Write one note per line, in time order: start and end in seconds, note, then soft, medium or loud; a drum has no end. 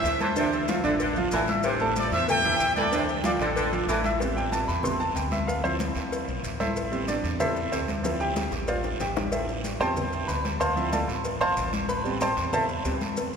0.00 0.78 D2 loud
0.00 0.14 E3 medium
0.00 0.14 E4 medium
0.00 0.18 C5 medium
0.00 0.14 E5 medium
0.00 0.18 E5 loud
0.00 cowbell medium
0.04 high conga soft
0.04 short guiro medium
0.04 maracas medium
0.20 0.29 E3 medium
0.20 0.33 A3 medium
0.20 0.33 A4 medium
0.20 0.69 A4 medium
0.20 0.69 C5 medium
0.20 0.34 A5 medium
0.20 cowbell medium
0.20 high conga medium
0.20 short guiro medium
0.20 maracas soft
0.36 0.63 C3 medium
0.36 0.62 D3 medium
0.36 0.63 D4 medium
0.36 0.63 D5 medium
0.36 cowbell loud
0.36 high conga soft
0.36 long guiro medium
0.36 maracas medium
0.53 high conga soft
0.53 maracas soft
0.68 0.81 F3 medium
0.68 0.82 F4 medium
0.68 0.82 F5 medium
0.68 cowbell medium
0.68 high conga loud
0.68 short guiro medium
0.68 maracas medium
0.84 1.29 A1 loud
0.84 1.10 D3 loud
0.84 0.93 D3 medium
0.84 1.10 D4 medium
0.84 1.10 D5 loud
0.84 high conga soft
0.84 short guiro medium
0.84 maracas soft
1.00 1.17 D3 medium
1.00 cowbell loud
1.00 high conga soft
1.00 long guiro medium
1.00 maracas medium
1.16 1.29 F3 medium
1.16 1.30 F4 medium
1.16 1.30 F5 medium
1.16 high conga soft
1.16 maracas soft
1.31 2.06 A1 loud
1.31 1.50 E3 medium
1.31 1.46 A3 medium
1.31 1.46 A4 medium
1.31 1.46 A5 medium
1.31 cowbell medium
1.31 high conga soft
1.31 short guiro medium
1.31 maracas medium
1.47 1.75 E4 medium
1.47 1.75 E5 medium
1.47 1.75 E6 medium
1.47 high conga medium
1.47 short guiro medium
1.47 maracas soft
1.63 2.35 C3 medium
1.63 cowbell loud
1.63 high conga soft
1.63 long guiro medium
1.63 maracas medium
1.80 2.07 A3 medium
1.80 2.07 A4 medium
1.80 2.07 A5 medium
1.80 high conga soft
1.80 maracas soft
1.96 2.11 A4 medium
1.96 2.11 D5 loud
1.96 cowbell medium
1.96 high conga medium
1.96 short guiro medium
1.96 maracas medium
2.11 2.56 E2 loud
2.11 2.25 E4 medium
2.11 2.28 C5 medium
2.11 2.25 E5 medium
2.11 2.28 E5 loud
2.11 2.26 E6 medium
2.11 high conga soft
2.11 short guiro medium
2.11 maracas soft
2.28 2.41 A3 medium
2.28 2.42 A4 medium
2.28 2.73 E5 medium
2.28 2.73 G5 loud
2.28 2.42 A5 medium
2.28 cowbell loud
2.28 high conga soft
2.28 low conga medium
2.28 long guiro medium
2.28 maracas medium
2.44 2.71 E3 medium
2.44 2.71 E4 medium
2.44 2.71 E5 medium
2.44 cowbell medium
2.44 high conga soft
2.44 low conga medium
2.44 maracas soft
2.59 3.34 D2 medium
2.59 cowbell medium
2.59 high conga soft
2.59 short guiro medium
2.59 maracas medium
2.76 2.85 E3 medium
2.76 2.90 A3 medium
2.76 3.06 A4 medium
2.76 2.90 A4 medium
2.76 3.06 D5 loud
2.76 2.90 A5 medium
2.76 cowbell medium
2.76 high conga medium
2.76 short guiro medium
2.76 maracas soft
2.92 3.18 C3 medium
2.92 3.18 D3 medium
2.92 3.19 D4 medium
2.92 3.19 D5 medium
2.92 cowbell loud
2.92 high conga soft
2.92 long guiro medium
2.92 maracas medium
3.08 high conga soft
3.08 maracas soft
3.24 3.38 F3 medium
3.24 3.38 F4 medium
3.24 3.32 A4 medium
3.24 3.32 D5 medium
3.24 3.38 F5 medium
3.24 cowbell medium
3.24 high conga loud
3.24 short guiro medium
3.24 maracas medium
3.39 3.84 A1 loud
3.39 3.67 D3 medium
3.39 3.49 D3 medium
3.39 3.67 D4 medium
3.39 3.86 F4 medium
3.39 3.85 A4 medium
3.39 3.67 D5 medium
3.39 high conga soft
3.39 short guiro medium
3.39 maracas soft
3.56 3.73 D3 medium
3.56 cowbell loud
3.56 high conga soft
3.56 long guiro medium
3.56 maracas medium
3.72 3.85 F3 medium
3.72 3.86 F4 medium
3.72 3.86 F5 medium
3.72 high conga soft
3.72 maracas soft
3.87 4.62 A1 medium
3.87 4.05 E3 medium
3.87 4.01 A3 medium
3.87 4.02 A4 medium
3.87 4.02 A5 medium
3.87 cowbell medium
3.87 high conga soft
3.87 short guiro medium
3.87 maracas medium
4.04 4.18 E4 medium
4.04 4.17 E5 medium
4.04 4.18 E6 medium
4.04 high conga medium
4.04 short guiro medium
4.04 maracas soft
4.20 4.66 G3 medium
4.20 4.66 B3 medium
4.20 4.66 C4 medium
4.20 cowbell loud
4.20 high conga soft
4.20 long guiro medium
4.20 maracas medium
4.35 4.52 G5 medium
4.35 high conga soft
4.35 maracas soft
4.52 4.68 A5 medium
4.52 cowbell medium
4.52 high conga medium
4.52 short guiro medium
4.52 maracas medium
4.68 5.13 E2 medium
4.68 4.83 B5 loud
4.68 high conga soft
4.68 short guiro medium
4.68 maracas soft
4.83 4.98 G3 soft
4.83 4.98 B3 soft
4.83 4.99 C4 medium
4.83 5.00 C6 loud
4.83 cowbell loud
4.83 high conga soft
4.83 low conga medium
4.83 long guiro medium
4.83 maracas medium
4.99 5.16 A5 medium
4.99 cowbell medium
4.99 high conga soft
4.99 maracas soft
5.15 5.90 D2 medium
5.15 5.31 G5 medium
5.15 cowbell medium
5.15 high conga soft
5.15 short guiro medium
5.15 maracas medium
5.31 5.48 E5 medium
5.31 cowbell medium
5.31 high conga medium
5.31 short guiro medium
5.31 maracas soft
5.47 5.63 F5 medium
5.47 cowbell loud
5.47 high conga soft
5.47 long guiro medium
5.47 maracas medium
5.63 6.72 F3 medium
5.63 6.72 C4 medium
5.63 6.59 E4 medium
5.63 5.74 C5 medium
5.63 high conga soft
5.63 maracas soft
5.79 cowbell medium
5.79 high conga loud
5.79 short guiro medium
5.79 maracas medium
5.95 6.25 D2 loud
5.95 high conga soft
5.95 short guiro medium
5.95 maracas soft
6.11 cowbell loud
6.11 high conga soft
6.11 long guiro medium
6.11 maracas medium
6.28 6.42 B1 medium
6.28 high conga soft
6.28 maracas soft
6.43 7.18 A1 medium
6.43 cowbell medium
6.43 high conga soft
6.43 short guiro medium
6.43 maracas medium
6.60 7.05 E4 medium
6.60 7.05 A4 medium
6.60 7.05 C5 medium
6.60 7.05 E5 medium
6.60 high conga medium
6.60 short guiro medium
6.60 maracas soft
6.76 cowbell loud
6.76 high conga soft
6.76 long guiro medium
6.76 maracas medium
6.91 7.13 G3 medium
6.91 7.13 B3 medium
6.91 7.14 C4 medium
6.91 high conga soft
6.91 maracas soft
7.07 7.38 D4 medium
7.07 7.38 D5 medium
7.07 cowbell medium
7.07 high conga medium
7.07 short guiro medium
7.07 maracas medium
7.23 7.68 E2 medium
7.23 high conga soft
7.23 short guiro medium
7.23 maracas soft
7.39 7.54 G3 soft
7.39 7.54 B3 soft
7.39 7.55 C4 medium
7.39 7.70 E4 medium
7.39 7.70 A4 medium
7.39 7.70 C5 medium
7.39 7.70 E5 medium
7.39 cowbell loud
7.39 high conga soft
7.39 low conga medium
7.39 long guiro medium
7.39 maracas medium
7.56 cowbell medium
7.56 high conga soft
7.56 maracas soft
7.71 8.46 D2 medium
7.71 7.88 C4 soft
7.71 7.88 G4 soft
7.71 7.88 A4 soft
7.71 7.88 C5 medium
7.71 cowbell medium
7.71 high conga soft
7.71 short guiro medium
7.71 maracas medium
7.88 cowbell medium
7.88 high conga medium
7.88 short guiro medium
7.88 maracas soft
8.03 8.25 F3 medium
8.03 8.25 C4 medium
8.03 8.26 E4 medium
8.03 cowbell loud
8.03 high bongo medium
8.03 high conga soft
8.03 long guiro medium
8.03 maracas medium
8.20 8.65 G4 medium
8.20 8.65 G5 loud
8.20 high conga soft
8.20 maracas soft
8.36 cowbell medium
8.36 high bongo medium
8.36 high conga loud
8.36 short guiro medium
8.36 maracas medium
8.51 8.96 A1 loud
8.51 high bongo medium
8.51 high conga soft
8.51 short guiro medium
8.51 maracas soft
8.68 8.98 F4 medium
8.68 8.98 C5 medium
8.68 8.98 D5 medium
8.68 8.98 F5 medium
8.68 cowbell loud
8.68 high conga soft
8.68 long guiro medium
8.68 maracas medium
8.84 low bongo medium
8.84 high conga soft
8.84 maracas soft
8.99 9.74 A1 medium
8.99 9.30 G4 medium
8.99 9.30 G5 medium
8.99 cowbell medium
8.99 low bongo medium
8.99 high conga soft
8.99 short guiro medium
8.99 maracas medium
9.16 low bongo loud
9.16 high conga medium
9.16 short guiro medium
9.16 maracas soft
9.32 9.48 E4 medium
9.32 9.48 A4 soft
9.32 9.48 C5 soft
9.32 9.48 E5 medium
9.32 cowbell loud
9.32 long guiro medium
9.32 maracas medium
9.49 high conga soft
9.49 maracas soft
9.64 cowbell medium
9.64 high conga medium
9.64 short guiro medium
9.64 maracas medium
9.80 10.25 E2 loud
9.80 10.01 G3 medium
9.80 10.02 B3 medium
9.80 10.02 C4 medium
9.80 10.25 C5 medium
9.80 10.25 G5 medium
9.80 10.25 A5 medium
9.80 10.25 C6 loud
9.80 high conga soft
9.80 short guiro medium
9.80 maracas soft
9.97 cowbell loud
9.97 high conga soft
9.97 low conga medium
9.97 long guiro medium
9.97 maracas medium
10.13 cowbell medium
10.13 high conga soft
10.13 maracas soft
10.28 11.03 D2 medium
10.28 10.58 B4 medium
10.28 10.58 B5 medium
10.28 cowbell medium
10.28 high conga soft
10.28 short guiro medium
10.28 maracas medium
10.45 cowbell medium
10.45 high conga medium
10.45 short guiro medium
10.45 maracas soft
10.60 10.90 C5 medium
10.60 10.90 F5 medium
10.60 10.90 A5 medium
10.60 10.90 C6 loud
10.60 cowbell loud
10.60 high conga soft
10.60 long guiro medium
10.60 maracas medium
10.76 10.97 F3 medium
10.76 10.98 C4 medium
10.76 10.98 E4 medium
10.76 high conga soft
10.76 maracas soft
10.92 11.08 A4 medium
10.92 11.08 D5 medium
10.92 11.08 F5 medium
10.92 11.08 A5 medium
10.92 cowbell medium
10.92 high conga loud
10.92 short guiro medium
10.92 maracas medium
11.08 11.38 A1 loud
11.08 high conga soft
11.08 short guiro medium
11.08 maracas soft
11.24 cowbell loud
11.24 high conga soft
11.24 long guiro medium
11.24 maracas medium
11.40 11.55 G1 medium
11.40 11.85 C5 loud
11.40 11.85 F5 medium
11.40 11.85 A5 medium
11.40 11.85 C6 loud
11.40 high conga soft
11.40 maracas soft
11.57 12.31 A1 medium
11.57 cowbell medium
11.57 high conga soft
11.57 short guiro medium
11.57 maracas medium
11.73 high conga medium
11.73 short guiro medium
11.73 maracas soft
11.88 12.18 B4 medium
11.88 12.18 B5 medium
11.88 cowbell loud
11.88 high conga soft
11.88 long guiro medium
11.88 maracas medium
12.04 12.26 G3 medium
12.04 12.26 B3 medium
12.04 12.26 C4 medium
12.04 high conga soft
12.04 maracas soft
12.20 12.51 C5 medium
12.20 12.51 G5 medium
12.20 12.51 A5 medium
12.20 12.51 C6 loud
12.20 cowbell medium
12.20 high conga medium
12.20 short guiro medium
12.20 maracas medium
12.37 12.81 E2 loud
12.37 high conga soft
12.37 short guiro medium
12.37 maracas soft
12.53 12.63 A4 medium
12.53 12.63 C5 medium
12.53 12.63 E5 medium
12.53 12.62 A5 loud
12.53 cowbell loud
12.53 high conga soft
12.53 low conga medium
12.53 long guiro medium
12.53 maracas medium
12.69 cowbell medium
12.69 high conga soft
12.69 maracas soft
12.85 13.37 D2 medium
12.85 12.99 G3 medium
12.85 12.99 B3 soft
12.85 13.00 C4 medium
12.85 cowbell medium
12.85 high conga soft
12.85 short guiro medium
12.85 maracas medium
13.01 cowbell medium
13.01 high conga medium
13.01 short guiro medium
13.01 maracas soft
13.17 cowbell loud
13.17 high conga soft
13.17 long guiro medium
13.17 maracas medium
13.33 high conga soft
13.33 maracas soft